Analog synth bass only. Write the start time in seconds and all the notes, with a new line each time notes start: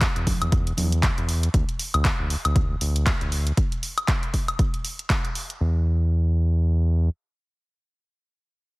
0.16 E2
0.42 E2
0.78 E2
1.18 E2
1.54 D2
1.94 D2
2.20 D2
2.45 D2
2.81 D2
3.21 D2
5.61 E2